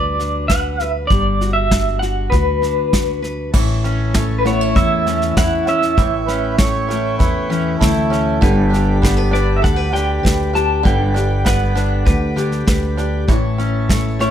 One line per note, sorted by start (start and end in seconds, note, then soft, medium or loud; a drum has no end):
0.00 1.06 D2 medium
0.00 1.09 G3 medium
0.00 0.18 D4 medium
0.00 1.07 F#4 medium
0.00 0.49 B4 medium
0.00 0.48 D5 medium
0.19 1.07 D4 medium
0.19 snare soft
0.48 0.80 B4 medium
0.48 0.91 F#5 medium
0.48 kick medium
0.48 snare medium
0.80 1.07 B4 medium
0.80 snare soft
1.07 2.28 G1 medium
1.07 3.54 G3 medium
1.07 1.53 D5 medium
1.07 kick medium
1.07 snare soft
1.41 2.02 F#4 medium
1.41 snare soft
1.53 1.99 E5 medium
1.71 2.61 D4 medium
1.71 kick medium
1.71 snare medium
1.99 2.32 F#4 medium
1.99 2.32 F#5 medium
1.99 snare soft
2.30 3.50 D2 medium
2.30 2.92 F#4 medium
2.30 3.18 B4 medium
2.30 kick medium
2.30 snare soft
2.62 3.50 D4 medium
2.62 snare soft
2.93 3.50 F#4 medium
2.93 kick medium
2.93 snare medium
3.22 3.50 B4 medium
3.22 snare soft
3.52 4.72 A1 medium
3.52 5.96 A2 medium
3.52 5.97 E3 medium
3.52 8.37 E4 medium
3.52 8.36 C#5 medium
3.52 4.15 C#5 medium
3.52 5.94 A5 medium
3.52 kick loud
3.52 snare soft
3.52 crash medium
3.84 4.45 C#4 medium
3.84 5.06 C#4 medium
3.84 snare soft
4.14 6.58 A3 medium
4.14 4.75 C#5 medium
4.14 kick medium
4.14 snare loud
4.38 4.45 B4 medium
4.45 5.94 A3 medium
4.45 4.61 B3 medium
4.45 5.36 E4 medium
4.45 4.77 C#5 medium
4.45 snare soft
4.61 5.05 C#4 medium
4.75 5.34 E2 loud
4.75 5.36 E4 medium
4.75 5.94 C#5 medium
4.75 5.37 E5 loud
4.75 kick medium
4.75 snare soft
5.06 5.94 E3 medium
5.06 5.66 C#4 medium
5.06 5.67 C#4 medium
5.06 snare soft
5.22 snare soft
5.37 5.95 E2 medium
5.37 7.18 E4 medium
5.37 6.89 E4 medium
5.37 5.68 F#5 loud
5.37 kick medium
5.37 snare medium
5.67 6.27 C#4 medium
5.67 5.95 C#4 medium
5.67 6.55 E5 medium
5.67 snare soft
5.82 snare soft
5.97 7.15 A1 medium
5.97 8.41 A2 medium
5.97 8.41 E3 medium
5.97 6.58 C#5 medium
5.97 8.38 G5 medium
5.97 kick medium
5.97 snare soft
6.27 6.87 C#4 medium
6.27 7.49 C#4 medium
6.27 6.56 B4 medium
6.27 snare soft
6.58 8.47 A3 medium
6.58 7.15 C#5 loud
6.58 7.20 C#5 medium
6.58 kick medium
6.58 snare loud
6.89 8.38 A3 medium
6.89 7.49 C#4 medium
6.89 7.80 E4 medium
6.89 snare soft
7.19 7.77 E2 loud
7.19 7.79 E4 medium
7.19 7.76 B4 medium
7.19 8.38 C#5 medium
7.19 kick medium
7.19 snare soft
7.50 8.37 E3 medium
7.50 8.10 C#4 medium
7.50 8.09 C#4 medium
7.50 snare soft
7.79 8.39 D2 medium
7.79 8.47 E4 medium
7.79 8.42 E4 medium
7.79 8.98 A4 medium
7.79 kick medium
7.79 snare medium
8.10 8.47 C#4 medium
8.10 8.38 C#4 medium
8.10 snare soft
8.41 9.60 G1 loud
8.41 10.82 D3 medium
8.41 10.83 G3 medium
8.41 13.24 G4 medium
8.41 9.02 B4 medium
8.41 13.24 D5 medium
8.41 13.25 B5 medium
8.41 kick loud
8.41 snare soft
8.70 9.30 D4 medium
8.70 9.91 G4 medium
8.70 snare soft
9.02 11.44 B3 medium
9.02 9.17 A4 medium
9.02 kick medium
9.02 snare loud
9.17 9.32 B4 medium
9.31 9.92 D4 medium
9.31 10.81 D4 medium
9.31 9.62 B4 medium
9.31 9.57 D5 medium
9.31 snare soft
9.56 9.63 E5 medium
9.62 10.21 D2 loud
9.62 9.76 A4 medium
9.62 9.93 F#5 loud
9.62 kick medium
9.62 snare soft
9.76 10.22 B4 medium
9.92 10.84 D3 medium
9.92 10.52 D4 medium
9.92 10.54 G4 medium
9.92 10.55 G5 loud
9.92 snare soft
10.23 10.82 D2 medium
10.23 10.81 B4 medium
10.23 kick medium
10.23 snare medium
10.54 11.13 D4 medium
10.54 10.81 G4 medium
10.54 10.86 A5 loud
10.54 snare soft
10.83 12.03 G1 loud
10.83 13.28 D3 medium
10.83 13.28 G3 medium
10.83 11.45 B4 medium
10.83 11.47 G5 loud
10.83 kick medium
10.83 snare soft
11.14 11.74 D4 medium
11.14 12.36 G4 medium
11.14 snare soft
11.45 13.34 B3 medium
11.45 11.75 B4 medium
11.45 12.34 F#5 medium
11.45 kick medium
11.45 snare loud
11.75 13.24 D4 medium
11.75 12.35 D4 medium
11.75 12.04 B4 medium
11.75 snare soft
12.05 12.64 D2 loud
12.05 12.65 B4 medium
12.05 kick medium
12.05 snare soft
12.36 13.28 D3 medium
12.36 12.96 D4 medium
12.36 12.97 G4 medium
12.36 snare soft
12.52 snare soft
12.67 13.25 D2 medium
12.67 13.24 B4 medium
12.67 kick medium
12.67 snare medium
12.97 13.34 D4 medium
12.97 13.25 G4 medium
12.97 snare soft
13.27 14.31 A1 loud
13.27 14.31 A2 medium
13.27 14.31 E3 medium
13.27 14.31 E4 medium
13.27 14.31 C#5 medium
13.27 13.90 C#5 medium
13.27 14.31 A5 medium
13.27 kick medium
13.27 snare soft
13.58 14.19 C#4 medium
13.58 14.31 C#4 medium
13.58 snare soft
13.89 14.31 A3 medium
13.89 14.31 C#5 medium
13.89 kick medium
13.89 snare medium
14.19 14.31 A3 medium
14.19 14.31 C#4 medium
14.19 14.31 E4 medium
14.19 14.31 C#5 medium
14.19 snare soft